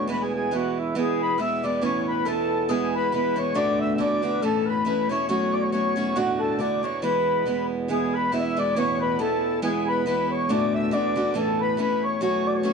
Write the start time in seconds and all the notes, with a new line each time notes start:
Already playing: E2 B2
0.08 E3 G#3 B3 E4 B4
0.23 G#4
0.36 G#4
0.51 E3 G#3 B3 E4 F#4
0.79 E4
0.95 E2 B2 E3 G#3 B3 E4 G#4
1.22 B4
1.38 E3 G#3 B3 E4 E5
1.57 E5
1.63 E3 G#3 B3 E4 D5
1.82 A2 E3 B3 C#4 E4 C#5
2.06 B4
2.25 E3 B3 C#4 E4 A4
2.69 E3 G#3 B3 E4 G#4
2.93 B4
3.12 E3 G#3 B3 E4 B4
3.36 E3 G#3 B3 E4 C#5
3.54 D2 A2 D3 A3 D4 F#4 D5
3.79 E5
3.94 D3 D5 E5
3.99 A3 D4 F#4 D5
4.22 D3 A3 D4 F#4 B4
4.42 E2 A2 B2 E3 A3 C#4 E4 A4
4.66 B4
4.85 E3 A3 C#4 E4 B4
5.09 E3 A3 C#4 E4 C#5
5.29 F#3 A3 C#4 F#4 C#5
5.52 D5
5.61 C#5
5.70 F#3 A3 C#4 C#5
5.75 F#4
5.96 F#3 A3 C#4 F#4
6.14 D2 A2 D3 A3 D4 F#4
6.39 A4
6.58 D3 A3 D4 F#4 D5
6.83 D3 A3 D4 F#4 C#5
7.02 E3 G#3 B3 E4 B4
7.46 E3 G#3 B3 E4
7.88 E2 B2 E3 G#3 B3 E4 G#4
8.13 B4
8.32 E3 G#3 B3 E4 E5
8.57 E3 G#3 B3 E4 D5
8.74 A2 E3 B3 C#4 E4 C#5
8.99 B4
9.19 E3 B3 C#4 E4 A4
9.62 E3 G#3 B3 E4 G#4
9.88 B4
10.06 E3 G#3 B3 E4 B4
10.29 C#5
10.48 D2 A2 D3 A3 D4 F#4 D5
10.73 E5
10.91 D3 A3 D4 F#4 D5
11.16 D3 A3 D4 F#4
11.34 E2 A2 B2 E3 A3 C#4 E4 A4
11.59 B4
11.77 E3 A3 C#4 E4 B4
12.02 C#5
12.21 F#3 A3 C#4 F#4 C#5
12.46 D5
12.54 C#5 D5
12.63 F#3 A3 C#4 F#4 C#5